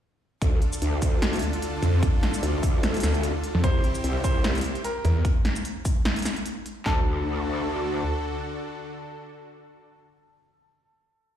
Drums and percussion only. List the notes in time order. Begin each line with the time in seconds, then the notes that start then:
0.42 kick, closed hi-hat
0.62 closed hi-hat
0.73 shaker
0.82 closed hi-hat
1.02 kick, open hi-hat, shaker
1.22 snare, closed hi-hat
1.33 closed hi-hat
1.36 closed hi-hat
1.39 closed hi-hat
1.42 closed hi-hat
1.53 closed hi-hat
1.62 closed hi-hat
1.83 closed hi-hat
2.03 kick, closed hi-hat
2.23 snare, closed hi-hat
2.34 shaker
2.43 closed hi-hat
2.63 kick, open hi-hat, shaker
2.83 snare, closed hi-hat
2.94 closed hi-hat
2.97 closed hi-hat
3.00 snare, closed hi-hat, shaker
3.14 closed hi-hat
3.23 closed hi-hat
3.44 closed hi-hat
3.64 kick, closed hi-hat
3.84 closed hi-hat
3.95 shaker
4.04 closed hi-hat
4.24 kick, open hi-hat, shaker
4.44 snare, closed hi-hat
4.55 closed hi-hat
4.58 closed hi-hat
4.61 closed hi-hat
4.64 closed hi-hat
4.75 closed hi-hat
4.84 closed hi-hat
5.05 closed hi-hat
5.25 kick, closed hi-hat
5.45 snare, closed hi-hat
5.56 shaker
5.65 closed hi-hat
5.85 kick, open hi-hat, shaker
6.05 snare, closed hi-hat
6.16 closed hi-hat
6.19 closed hi-hat
6.22 snare, closed hi-hat
6.25 closed hi-hat, shaker
6.36 closed hi-hat
6.46 closed hi-hat
6.66 closed hi-hat
6.86 kick, snare, clap